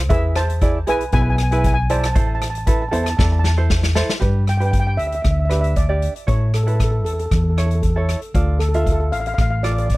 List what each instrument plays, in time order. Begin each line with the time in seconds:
Already playing: fingered electric bass C2
0.09 fingered electric bass E2, ukulele E4 G#4 B4, steel pan G#4 E5, kick, closed hi-hat
0.36 steel pan C5 A5, cross-stick, closed hi-hat
0.50 closed hi-hat
0.61 ukulele E4 G#4 D5, kick, closed hi-hat
0.87 fingered electric bass B1, ukulele E4 G#4 B4, steel pan B4 G#5, closed hi-hat
1.01 closed hi-hat
1.12 fingered electric bass B1, ukulele E4 G#4 B4, steel pan B4 G#5, kick, closed hi-hat
1.22 steel pan G#5
1.30 steel pan G#5
1.36 steel pan G#5, cross-stick, closed hi-hat
1.43 steel pan G#5
1.51 ukulele E4 G#4 B4, steel pan G#5, closed hi-hat
1.58 steel pan G#5
1.64 steel pan G#5, kick, closed hi-hat
1.74 steel pan G#5
1.90 ukulele E4 G#4 D5, steel pan C5 A5, closed hi-hat
1.99 steel pan A5
2.04 steel pan A5, cross-stick, closed hi-hat
2.13 fingered electric bass A1, ukulele E4 A4 C5, steel pan A5, kick, closed hi-hat
2.20 steel pan A5
2.27 steel pan A5
2.35 steel pan A5
2.42 steel pan A5, cross-stick, closed hi-hat
2.50 steel pan A5
2.55 steel pan A5, closed hi-hat
2.67 ukulele E4 A4 B4, steel pan A5, kick, closed hi-hat
2.73 steel pan A5
2.82 steel pan A5
2.89 fingered electric bass E2, ukulele E4 A4, steel pan A5
2.93 ukulele C5, steel pan A5, closed hi-hat
3.04 steel pan A5, cross-stick, closed hi-hat
3.10 steel pan A5
3.17 fingered electric bass E2, ukulele E4 A4 D5, steel pan A5, kick, snare
3.24 steel pan A5
3.32 steel pan A5
3.39 steel pan A5
3.44 steel pan A5, snare
3.57 ukulele E4 A4 C5
3.70 kick, snare
3.83 snare
3.95 ukulele E4 A4 C5, snare
4.09 snare
4.20 fingered electric bass G2, ukulele D4 G4 B4, kick, closed hi-hat
4.47 steel pan G5, cross-stick, closed hi-hat
4.57 ukulele D4 G4 B4, steel pan G5, closed hi-hat
4.65 steel pan G5
4.71 steel pan G5, kick, closed hi-hat
4.80 steel pan G5
4.87 steel pan G5
4.97 fingered electric bass D2, steel pan E5, closed hi-hat
5.07 steel pan E5
5.12 steel pan E5, closed hi-hat
5.22 fingered electric bass D2, steel pan E5, kick, cross-stick, closed hi-hat
5.31 steel pan E5
5.40 steel pan E5
5.45 steel pan E5
5.49 ukulele D4 G4 B4, steel pan E5, cross-stick, closed hi-hat
5.61 steel pan E5, closed hi-hat
5.76 steel pan D5, kick, closed hi-hat
5.89 ukulele D4 G4 D5
6.02 closed hi-hat
6.16 closed hi-hat
6.27 fingered electric bass A2, ukulele E4 A4 C#5, steel pan C#5, kick, closed hi-hat
6.54 steel pan A4, cross-stick, closed hi-hat
6.63 ukulele E4 A4 B4, steel pan A4
6.68 steel pan A4, closed hi-hat
6.75 steel pan A4
6.80 kick, cross-stick, closed hi-hat
6.84 steel pan A4
6.91 steel pan A4
7.05 fingered electric bass E2, steel pan A4, closed hi-hat
7.13 steel pan A4
7.19 steel pan A4, closed hi-hat
7.26 steel pan A4
7.31 fingered electric bass E2, steel pan A4, kick, cross-stick, closed hi-hat
7.44 steel pan A4
7.50 steel pan A4
7.57 ukulele E4 A4 C#5, steel pan A4, cross-stick, closed hi-hat
7.66 steel pan A4
7.71 closed hi-hat
7.75 steel pan A4
7.82 steel pan A4, kick, closed hi-hat
7.90 steel pan A4
7.96 ukulele E4 A4 C#5, steel pan A4
8.09 cross-stick, closed hi-hat
8.22 closed hi-hat
8.34 fingered electric bass D2, ukulele F4 A4 D5, kick, closed hi-hat
8.59 steel pan A4, cross-stick, closed hi-hat
8.69 steel pan A4
8.74 ukulele F4 A4 E5, steel pan A4, closed hi-hat
8.83 steel pan A4, kick, closed hi-hat
8.92 steel pan A4
9.00 steel pan A4
9.12 fingered electric bass A1, steel pan F5, closed hi-hat
9.20 steel pan F5
9.26 steel pan F5, closed hi-hat
9.34 steel pan F5
9.38 fingered electric bass A1, steel pan F5, kick, cross-stick, closed hi-hat
9.50 steel pan F5
9.63 ukulele F4 A4 D5, steel pan D5, cross-stick, closed hi-hat
9.72 steel pan D5
9.78 steel pan D5, closed hi-hat
9.86 steel pan D5, kick, closed hi-hat